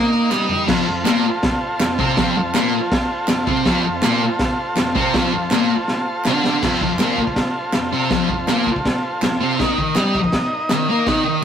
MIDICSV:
0, 0, Header, 1, 4, 480
1, 0, Start_track
1, 0, Tempo, 371058
1, 890, Time_signature, 4, 2, 24, 8
1, 14800, End_track
2, 0, Start_track
2, 0, Title_t, "Transistor combo organ"
2, 0, Program_c, 0, 18
2, 0, Note_on_c, 0, 63, 78
2, 0, Note_on_c, 0, 70, 75
2, 0, Note_on_c, 0, 75, 90
2, 828, Note_off_c, 0, 63, 0
2, 835, Note_off_c, 0, 70, 0
2, 839, Note_off_c, 0, 75, 0
2, 902, Note_on_c, 0, 65, 75
2, 908, Note_on_c, 0, 69, 72
2, 918, Note_on_c, 0, 72, 91
2, 4684, Note_off_c, 0, 65, 0
2, 4687, Note_off_c, 0, 69, 0
2, 4692, Note_off_c, 0, 72, 0
2, 4732, Note_on_c, 0, 65, 77
2, 4732, Note_on_c, 0, 69, 78
2, 4734, Note_on_c, 0, 72, 87
2, 8520, Note_off_c, 0, 65, 0
2, 8520, Note_off_c, 0, 69, 0
2, 8521, Note_off_c, 0, 72, 0
2, 8581, Note_on_c, 0, 65, 78
2, 8592, Note_on_c, 0, 69, 68
2, 8604, Note_on_c, 0, 72, 83
2, 12367, Note_off_c, 0, 65, 0
2, 12372, Note_off_c, 0, 69, 0
2, 12378, Note_off_c, 0, 72, 0
2, 12414, Note_on_c, 0, 63, 79
2, 12421, Note_on_c, 0, 70, 72
2, 12430, Note_on_c, 0, 75, 90
2, 14800, Note_off_c, 0, 63, 0
2, 14800, Note_off_c, 0, 70, 0
2, 14800, Note_off_c, 0, 75, 0
2, 14800, End_track
3, 0, Start_track
3, 0, Title_t, "Distorted electric guitar"
3, 0, Program_c, 1, 30
3, 0, Note_on_c, 1, 58, 85
3, 0, Note_on_c, 1, 70, 101
3, 399, Note_off_c, 1, 58, 0
3, 404, Note_on_c, 1, 55, 82
3, 406, Note_off_c, 1, 70, 0
3, 417, Note_on_c, 1, 67, 90
3, 870, Note_on_c, 1, 41, 96
3, 878, Note_off_c, 1, 55, 0
3, 883, Note_on_c, 1, 53, 112
3, 887, Note_off_c, 1, 67, 0
3, 1108, Note_off_c, 1, 41, 0
3, 1120, Note_off_c, 1, 53, 0
3, 1124, Note_on_c, 1, 41, 79
3, 1320, Note_off_c, 1, 41, 0
3, 1353, Note_on_c, 1, 46, 85
3, 1369, Note_on_c, 1, 58, 95
3, 1595, Note_off_c, 1, 46, 0
3, 1603, Note_off_c, 1, 58, 0
3, 2339, Note_on_c, 1, 41, 72
3, 2527, Note_off_c, 1, 41, 0
3, 2569, Note_on_c, 1, 48, 97
3, 2582, Note_on_c, 1, 60, 103
3, 2803, Note_off_c, 1, 48, 0
3, 2810, Note_off_c, 1, 60, 0
3, 2814, Note_on_c, 1, 41, 89
3, 2819, Note_on_c, 1, 53, 101
3, 3046, Note_off_c, 1, 41, 0
3, 3048, Note_off_c, 1, 53, 0
3, 3067, Note_on_c, 1, 41, 79
3, 3251, Note_off_c, 1, 41, 0
3, 3295, Note_on_c, 1, 46, 108
3, 3307, Note_on_c, 1, 58, 97
3, 3526, Note_off_c, 1, 46, 0
3, 3532, Note_off_c, 1, 58, 0
3, 4267, Note_on_c, 1, 41, 71
3, 4451, Note_off_c, 1, 41, 0
3, 4485, Note_on_c, 1, 48, 103
3, 4500, Note_on_c, 1, 60, 108
3, 4720, Note_off_c, 1, 48, 0
3, 4725, Note_on_c, 1, 41, 104
3, 4728, Note_off_c, 1, 60, 0
3, 4734, Note_on_c, 1, 53, 100
3, 4948, Note_off_c, 1, 41, 0
3, 4964, Note_on_c, 1, 41, 80
3, 4965, Note_off_c, 1, 53, 0
3, 5159, Note_off_c, 1, 41, 0
3, 5207, Note_on_c, 1, 46, 96
3, 5216, Note_on_c, 1, 58, 109
3, 5441, Note_off_c, 1, 46, 0
3, 5446, Note_off_c, 1, 58, 0
3, 6162, Note_on_c, 1, 41, 70
3, 6358, Note_off_c, 1, 41, 0
3, 6397, Note_on_c, 1, 48, 103
3, 6414, Note_on_c, 1, 60, 105
3, 6636, Note_off_c, 1, 48, 0
3, 6645, Note_off_c, 1, 60, 0
3, 6652, Note_on_c, 1, 41, 87
3, 6670, Note_on_c, 1, 53, 98
3, 6883, Note_off_c, 1, 41, 0
3, 6893, Note_off_c, 1, 53, 0
3, 6903, Note_on_c, 1, 41, 80
3, 7089, Note_off_c, 1, 41, 0
3, 7141, Note_on_c, 1, 46, 89
3, 7153, Note_on_c, 1, 58, 105
3, 7368, Note_off_c, 1, 46, 0
3, 7374, Note_off_c, 1, 58, 0
3, 8109, Note_on_c, 1, 50, 87
3, 8117, Note_on_c, 1, 62, 102
3, 8573, Note_off_c, 1, 50, 0
3, 8577, Note_off_c, 1, 62, 0
3, 8588, Note_on_c, 1, 41, 95
3, 8592, Note_on_c, 1, 53, 100
3, 8813, Note_off_c, 1, 41, 0
3, 8815, Note_off_c, 1, 53, 0
3, 8831, Note_on_c, 1, 41, 74
3, 9014, Note_off_c, 1, 41, 0
3, 9054, Note_on_c, 1, 46, 86
3, 9074, Note_on_c, 1, 58, 98
3, 9286, Note_off_c, 1, 46, 0
3, 9296, Note_off_c, 1, 58, 0
3, 10027, Note_on_c, 1, 41, 65
3, 10212, Note_off_c, 1, 41, 0
3, 10249, Note_on_c, 1, 48, 96
3, 10258, Note_on_c, 1, 60, 95
3, 10484, Note_off_c, 1, 48, 0
3, 10487, Note_on_c, 1, 41, 89
3, 10489, Note_off_c, 1, 60, 0
3, 10502, Note_on_c, 1, 53, 114
3, 10720, Note_off_c, 1, 41, 0
3, 10731, Note_off_c, 1, 53, 0
3, 10735, Note_on_c, 1, 41, 75
3, 10927, Note_off_c, 1, 41, 0
3, 10970, Note_on_c, 1, 46, 101
3, 10979, Note_on_c, 1, 58, 103
3, 11205, Note_off_c, 1, 46, 0
3, 11210, Note_off_c, 1, 58, 0
3, 11946, Note_on_c, 1, 41, 76
3, 12132, Note_off_c, 1, 41, 0
3, 12170, Note_on_c, 1, 48, 98
3, 12186, Note_on_c, 1, 60, 111
3, 12404, Note_off_c, 1, 48, 0
3, 12410, Note_on_c, 1, 51, 100
3, 12412, Note_off_c, 1, 60, 0
3, 12423, Note_on_c, 1, 63, 109
3, 12644, Note_off_c, 1, 51, 0
3, 12650, Note_off_c, 1, 63, 0
3, 12660, Note_on_c, 1, 51, 77
3, 12848, Note_off_c, 1, 51, 0
3, 12891, Note_on_c, 1, 55, 96
3, 12904, Note_on_c, 1, 67, 108
3, 13124, Note_off_c, 1, 55, 0
3, 13131, Note_off_c, 1, 67, 0
3, 13858, Note_on_c, 1, 51, 71
3, 14045, Note_off_c, 1, 51, 0
3, 14090, Note_on_c, 1, 58, 90
3, 14098, Note_on_c, 1, 70, 110
3, 14318, Note_on_c, 1, 51, 94
3, 14321, Note_off_c, 1, 58, 0
3, 14325, Note_off_c, 1, 70, 0
3, 14325, Note_on_c, 1, 63, 106
3, 14525, Note_off_c, 1, 51, 0
3, 14540, Note_on_c, 1, 51, 79
3, 14558, Note_off_c, 1, 63, 0
3, 14745, Note_off_c, 1, 51, 0
3, 14800, End_track
4, 0, Start_track
4, 0, Title_t, "Drums"
4, 403, Note_on_c, 9, 38, 66
4, 412, Note_on_c, 9, 39, 89
4, 533, Note_off_c, 9, 38, 0
4, 542, Note_off_c, 9, 39, 0
4, 637, Note_on_c, 9, 43, 82
4, 766, Note_off_c, 9, 43, 0
4, 883, Note_on_c, 9, 38, 111
4, 887, Note_on_c, 9, 49, 113
4, 887, Note_on_c, 9, 57, 59
4, 889, Note_on_c, 9, 36, 106
4, 1012, Note_off_c, 9, 38, 0
4, 1016, Note_off_c, 9, 49, 0
4, 1016, Note_off_c, 9, 57, 0
4, 1018, Note_off_c, 9, 36, 0
4, 1368, Note_on_c, 9, 38, 114
4, 1372, Note_on_c, 9, 57, 61
4, 1376, Note_on_c, 9, 39, 107
4, 1498, Note_off_c, 9, 38, 0
4, 1502, Note_off_c, 9, 57, 0
4, 1505, Note_off_c, 9, 39, 0
4, 1848, Note_on_c, 9, 38, 119
4, 1852, Note_on_c, 9, 57, 65
4, 1854, Note_on_c, 9, 36, 112
4, 1977, Note_off_c, 9, 38, 0
4, 1981, Note_off_c, 9, 57, 0
4, 1983, Note_off_c, 9, 36, 0
4, 2327, Note_on_c, 9, 38, 111
4, 2331, Note_on_c, 9, 57, 67
4, 2336, Note_on_c, 9, 39, 103
4, 2456, Note_off_c, 9, 38, 0
4, 2460, Note_off_c, 9, 57, 0
4, 2466, Note_off_c, 9, 39, 0
4, 2572, Note_on_c, 9, 36, 109
4, 2701, Note_off_c, 9, 36, 0
4, 2809, Note_on_c, 9, 38, 113
4, 2813, Note_on_c, 9, 57, 66
4, 2814, Note_on_c, 9, 36, 104
4, 2938, Note_off_c, 9, 38, 0
4, 2942, Note_off_c, 9, 57, 0
4, 2944, Note_off_c, 9, 36, 0
4, 3291, Note_on_c, 9, 38, 112
4, 3295, Note_on_c, 9, 57, 70
4, 3296, Note_on_c, 9, 39, 111
4, 3420, Note_off_c, 9, 38, 0
4, 3424, Note_off_c, 9, 57, 0
4, 3426, Note_off_c, 9, 39, 0
4, 3772, Note_on_c, 9, 38, 122
4, 3773, Note_on_c, 9, 36, 110
4, 3776, Note_on_c, 9, 57, 67
4, 3902, Note_off_c, 9, 38, 0
4, 3903, Note_off_c, 9, 36, 0
4, 3906, Note_off_c, 9, 57, 0
4, 4242, Note_on_c, 9, 38, 120
4, 4244, Note_on_c, 9, 39, 94
4, 4245, Note_on_c, 9, 57, 65
4, 4371, Note_off_c, 9, 38, 0
4, 4373, Note_off_c, 9, 39, 0
4, 4375, Note_off_c, 9, 57, 0
4, 4491, Note_on_c, 9, 36, 104
4, 4620, Note_off_c, 9, 36, 0
4, 4730, Note_on_c, 9, 38, 105
4, 4731, Note_on_c, 9, 36, 96
4, 4734, Note_on_c, 9, 57, 56
4, 4859, Note_off_c, 9, 38, 0
4, 4860, Note_off_c, 9, 36, 0
4, 4863, Note_off_c, 9, 57, 0
4, 5202, Note_on_c, 9, 38, 108
4, 5206, Note_on_c, 9, 57, 65
4, 5211, Note_on_c, 9, 39, 97
4, 5331, Note_off_c, 9, 38, 0
4, 5335, Note_off_c, 9, 57, 0
4, 5340, Note_off_c, 9, 39, 0
4, 5683, Note_on_c, 9, 38, 121
4, 5687, Note_on_c, 9, 36, 109
4, 5687, Note_on_c, 9, 57, 64
4, 5812, Note_off_c, 9, 38, 0
4, 5816, Note_off_c, 9, 36, 0
4, 5816, Note_off_c, 9, 57, 0
4, 6166, Note_on_c, 9, 38, 122
4, 6167, Note_on_c, 9, 39, 88
4, 6169, Note_on_c, 9, 57, 65
4, 6295, Note_off_c, 9, 38, 0
4, 6297, Note_off_c, 9, 39, 0
4, 6299, Note_off_c, 9, 57, 0
4, 6409, Note_on_c, 9, 36, 107
4, 6538, Note_off_c, 9, 36, 0
4, 6650, Note_on_c, 9, 36, 106
4, 6652, Note_on_c, 9, 38, 118
4, 6656, Note_on_c, 9, 57, 66
4, 6780, Note_off_c, 9, 36, 0
4, 6781, Note_off_c, 9, 38, 0
4, 6785, Note_off_c, 9, 57, 0
4, 7126, Note_on_c, 9, 38, 121
4, 7129, Note_on_c, 9, 39, 92
4, 7130, Note_on_c, 9, 57, 70
4, 7255, Note_off_c, 9, 38, 0
4, 7259, Note_off_c, 9, 39, 0
4, 7259, Note_off_c, 9, 57, 0
4, 7605, Note_on_c, 9, 38, 70
4, 7734, Note_off_c, 9, 38, 0
4, 8082, Note_on_c, 9, 39, 86
4, 8086, Note_on_c, 9, 38, 105
4, 8211, Note_off_c, 9, 39, 0
4, 8216, Note_off_c, 9, 38, 0
4, 8333, Note_on_c, 9, 38, 92
4, 8463, Note_off_c, 9, 38, 0
4, 8568, Note_on_c, 9, 38, 101
4, 8571, Note_on_c, 9, 49, 113
4, 8571, Note_on_c, 9, 57, 57
4, 8572, Note_on_c, 9, 36, 102
4, 8697, Note_off_c, 9, 38, 0
4, 8701, Note_off_c, 9, 49, 0
4, 8701, Note_off_c, 9, 57, 0
4, 8702, Note_off_c, 9, 36, 0
4, 8811, Note_on_c, 9, 36, 78
4, 8940, Note_off_c, 9, 36, 0
4, 9040, Note_on_c, 9, 38, 112
4, 9044, Note_on_c, 9, 57, 60
4, 9047, Note_on_c, 9, 39, 94
4, 9170, Note_off_c, 9, 38, 0
4, 9173, Note_off_c, 9, 57, 0
4, 9176, Note_off_c, 9, 39, 0
4, 9287, Note_on_c, 9, 36, 78
4, 9407, Note_off_c, 9, 36, 0
4, 9407, Note_on_c, 9, 36, 79
4, 9524, Note_on_c, 9, 38, 107
4, 9528, Note_off_c, 9, 36, 0
4, 9528, Note_on_c, 9, 36, 99
4, 9528, Note_on_c, 9, 57, 62
4, 9653, Note_off_c, 9, 38, 0
4, 9657, Note_off_c, 9, 36, 0
4, 9657, Note_off_c, 9, 57, 0
4, 9995, Note_on_c, 9, 38, 118
4, 9999, Note_on_c, 9, 57, 66
4, 10003, Note_on_c, 9, 39, 80
4, 10124, Note_off_c, 9, 38, 0
4, 10128, Note_off_c, 9, 57, 0
4, 10133, Note_off_c, 9, 39, 0
4, 10485, Note_on_c, 9, 38, 107
4, 10487, Note_on_c, 9, 36, 100
4, 10489, Note_on_c, 9, 57, 59
4, 10615, Note_off_c, 9, 38, 0
4, 10617, Note_off_c, 9, 36, 0
4, 10619, Note_off_c, 9, 57, 0
4, 10728, Note_on_c, 9, 36, 77
4, 10857, Note_off_c, 9, 36, 0
4, 10964, Note_on_c, 9, 38, 110
4, 10968, Note_on_c, 9, 57, 66
4, 10974, Note_on_c, 9, 39, 85
4, 11094, Note_off_c, 9, 38, 0
4, 11098, Note_off_c, 9, 57, 0
4, 11103, Note_off_c, 9, 39, 0
4, 11213, Note_on_c, 9, 36, 73
4, 11335, Note_off_c, 9, 36, 0
4, 11335, Note_on_c, 9, 36, 78
4, 11454, Note_off_c, 9, 36, 0
4, 11454, Note_on_c, 9, 36, 97
4, 11457, Note_on_c, 9, 38, 119
4, 11461, Note_on_c, 9, 57, 67
4, 11584, Note_off_c, 9, 36, 0
4, 11586, Note_off_c, 9, 38, 0
4, 11590, Note_off_c, 9, 57, 0
4, 11932, Note_on_c, 9, 39, 85
4, 11937, Note_on_c, 9, 38, 115
4, 11941, Note_on_c, 9, 57, 63
4, 12061, Note_off_c, 9, 39, 0
4, 12066, Note_off_c, 9, 38, 0
4, 12070, Note_off_c, 9, 57, 0
4, 12416, Note_on_c, 9, 36, 108
4, 12419, Note_on_c, 9, 38, 101
4, 12422, Note_on_c, 9, 57, 56
4, 12546, Note_off_c, 9, 36, 0
4, 12548, Note_off_c, 9, 38, 0
4, 12552, Note_off_c, 9, 57, 0
4, 12653, Note_on_c, 9, 36, 81
4, 12783, Note_off_c, 9, 36, 0
4, 12876, Note_on_c, 9, 38, 112
4, 12880, Note_on_c, 9, 57, 60
4, 12882, Note_on_c, 9, 39, 92
4, 13005, Note_off_c, 9, 38, 0
4, 13009, Note_off_c, 9, 57, 0
4, 13011, Note_off_c, 9, 39, 0
4, 13130, Note_on_c, 9, 36, 78
4, 13248, Note_off_c, 9, 36, 0
4, 13248, Note_on_c, 9, 36, 82
4, 13356, Note_on_c, 9, 38, 119
4, 13360, Note_on_c, 9, 57, 65
4, 13366, Note_off_c, 9, 36, 0
4, 13366, Note_on_c, 9, 36, 101
4, 13486, Note_off_c, 9, 38, 0
4, 13489, Note_off_c, 9, 57, 0
4, 13495, Note_off_c, 9, 36, 0
4, 13832, Note_on_c, 9, 38, 116
4, 13836, Note_on_c, 9, 57, 66
4, 13848, Note_on_c, 9, 39, 91
4, 13961, Note_off_c, 9, 38, 0
4, 13965, Note_off_c, 9, 57, 0
4, 13977, Note_off_c, 9, 39, 0
4, 14314, Note_on_c, 9, 38, 103
4, 14318, Note_on_c, 9, 57, 62
4, 14319, Note_on_c, 9, 36, 110
4, 14444, Note_off_c, 9, 38, 0
4, 14447, Note_off_c, 9, 57, 0
4, 14448, Note_off_c, 9, 36, 0
4, 14800, End_track
0, 0, End_of_file